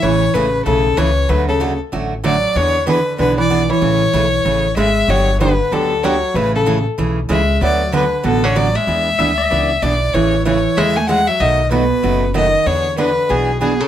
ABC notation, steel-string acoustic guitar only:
X:1
M:4/4
L:1/8
Q:"Swing" 1/4=190
K:A
V:1 name="Steel-string acoustic guitar"
[C,E,A,CG] z [C,E,A,CG] z [C,E,A,CG] z [C,E,A,CG] z | [D,F,A,CF] z [D,F,A,CF] z [D,F,A,CF] z [D,F,A,CF] z | [E,B,DG] z [E,B,DG] z [E,B,DG] z [E,B,DG] z | [C,E,A,CG] z [C,E,A,CG] z [C,E,A,CG] z [C,E,A,CG] z |
[D,F,B,D=G] z [D,F,B,DG] z [D,F,B,DG] z [D,F,B,DG] z | [C,E,A,CG] z [C,E,A,CG] z [C,E,A,CG] z [C,E,A,CG] z | [D,F,B,FB] z [D,F,B,FB] z [D,F,B,FB] z [D,F,B,FB] z | [E,B,DG] z [E,B,DG] z [E,B,DG] z [E,B,DG] z |
[C,E,A,CG] z [C,E,A,CG] z [C,E,A,CG] z [C,E,A,CG] z | [B,,F,A,^DF] z [B,,F,A,DF] z [B,,F,A,DF] z [B,,F,A,DF] z | [E,B,DG] z [E,B,DG] z [E,B,DG] z [E,B,DG] z |]